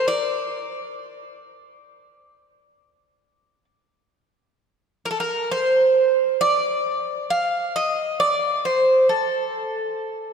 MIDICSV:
0, 0, Header, 1, 2, 480
1, 0, Start_track
1, 0, Tempo, 900901
1, 45, Time_signature, 9, 3, 24, 8
1, 5504, End_track
2, 0, Start_track
2, 0, Title_t, "Bouzouki"
2, 0, Program_c, 0, 25
2, 41, Note_on_c, 0, 74, 94
2, 1941, Note_off_c, 0, 74, 0
2, 2693, Note_on_c, 0, 70, 82
2, 2719, Note_off_c, 0, 70, 0
2, 2721, Note_on_c, 0, 69, 75
2, 2759, Note_off_c, 0, 69, 0
2, 2770, Note_on_c, 0, 70, 85
2, 2935, Note_off_c, 0, 70, 0
2, 2938, Note_on_c, 0, 72, 89
2, 3390, Note_off_c, 0, 72, 0
2, 3415, Note_on_c, 0, 74, 98
2, 3868, Note_off_c, 0, 74, 0
2, 3892, Note_on_c, 0, 77, 96
2, 4111, Note_off_c, 0, 77, 0
2, 4133, Note_on_c, 0, 75, 98
2, 4366, Note_off_c, 0, 75, 0
2, 4368, Note_on_c, 0, 74, 93
2, 4589, Note_off_c, 0, 74, 0
2, 4610, Note_on_c, 0, 72, 86
2, 4830, Note_off_c, 0, 72, 0
2, 4845, Note_on_c, 0, 69, 74
2, 5504, Note_off_c, 0, 69, 0
2, 5504, End_track
0, 0, End_of_file